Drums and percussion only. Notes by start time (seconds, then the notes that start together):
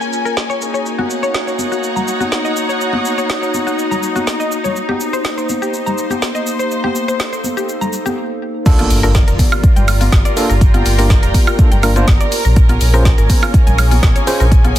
0.01 shaker
0.13 shaker
0.26 shaker
0.37 snare, shaker
0.50 shaker
0.62 shaker
0.75 shaker
0.86 shaker
0.99 high conga
1.10 shaker
1.23 shaker
1.34 snare, shaker
1.48 shaker
1.59 high conga, shaker
1.72 shaker
1.83 shaker
1.96 low conga, shaker
2.08 shaker
2.20 high conga, shaker
2.32 snare, shaker
2.45 shaker
2.57 shaker
2.70 shaker
2.81 shaker
2.93 high conga
3.05 shaker
3.18 shaker
3.30 snare, shaker
3.43 shaker
3.54 high conga, shaker
3.67 shaker
3.79 shaker
3.91 low conga, shaker
4.03 shaker
4.16 high conga, shaker
4.27 snare, shaker
4.40 shaker
4.52 shaker
4.65 low conga, shaker
4.76 shaker
4.89 high conga
5.01 shaker
5.14 shaker
5.25 snare, shaker
5.38 shaker
5.49 high conga, shaker
5.62 shaker
5.74 shaker
5.87 low conga, shaker
5.98 shaker
6.10 high conga, shaker
6.22 snare, shaker
6.35 shaker
6.47 shaker
6.60 shaker
6.71 shaker
6.84 high conga
6.96 shaker
7.09 shaker
7.20 snare, shaker
7.33 shaker
7.44 high conga, shaker
7.57 shaker
7.69 shaker
7.81 low conga, shaker
7.93 shaker
8.06 high conga, shaker
8.66 kick, closed hi-hat, crash, shaker
8.79 closed hi-hat, high conga
8.90 open hi-hat, shaker
9.04 shaker
9.15 kick, snare, closed hi-hat, shaker
9.28 closed hi-hat, shaker
9.39 kick, open hi-hat, high conga, shaker
9.52 high woodblock, shaker
9.64 kick, closed hi-hat, shaker
9.76 closed hi-hat, low conga, shaker
9.88 open hi-hat, high woodblock, shaker
10.01 open hi-hat, high conga, shaker
10.12 kick, snare, closed hi-hat, shaker
10.25 closed hi-hat, shaker
10.37 open hi-hat, shaker
10.50 shaker
10.61 kick, closed hi-hat, shaker
10.74 closed hi-hat, high conga
10.86 open hi-hat, shaker
10.99 open hi-hat, shaker
11.10 kick, snare, closed hi-hat, shaker
11.23 closed hi-hat, shaker
11.34 kick, open hi-hat, high conga, shaker
11.47 high woodblock, shaker
11.59 kick, closed hi-hat, shaker
11.72 closed hi-hat, low conga, shaker
11.83 open hi-hat, high woodblock, shaker
11.96 closed hi-hat, high conga, shaker
12.08 kick, snare, closed hi-hat, shaker
12.21 closed hi-hat, shaker
12.32 open hi-hat, shaker
12.45 shaker
12.56 kick, closed hi-hat, shaker
12.69 closed hi-hat, high conga
12.81 open hi-hat, shaker
12.94 shaker
13.05 kick, snare, closed hi-hat, shaker
13.18 closed hi-hat, shaker
13.30 kick, open hi-hat, high conga, shaker
13.43 high woodblock, shaker
13.54 kick, closed hi-hat, shaker
13.67 closed hi-hat, low conga, shaker
13.78 open hi-hat, high woodblock, shaker
13.91 open hi-hat, high conga, shaker
14.03 kick, snare, closed hi-hat, shaker
14.16 closed hi-hat, shaker
14.27 open hi-hat, shaker
14.40 shaker
14.52 kick, closed hi-hat, shaker
14.65 closed hi-hat, high conga